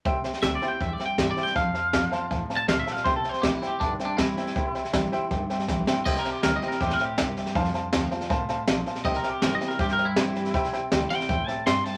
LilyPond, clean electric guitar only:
\new Staff \with { instrumentName = "Clean electric guitar" } { \time 4/4 \key c \mixolydian \tempo 4 = 160 r4 \tuplet 3/2 { e''8 d''8 g''8 e''8 d''8 g''8 e''8 d''8 g''8 } | f''2 \tuplet 3/2 { r4 a''8 f''8 e''8 f''8 } | \tuplet 3/2 { c''8 a'8 c''8 g'8 e'8 g'8 d'8 r8 d'8 } e'4~ | e'2 r2 |
\tuplet 3/2 { ees''8 bes'8 g'8 bes'8 ees''8 bes'8 g'8 bes'8 g'8~ } g'4~ | g'8 r2. r8 | \tuplet 3/2 { ees''8 bes'8 g'8 bes'8 ees''8 bes'8 g'8 bes'8 e'8~ } e'4~ | e'8 r4 g''4 a''8 c'''8 a''8 | }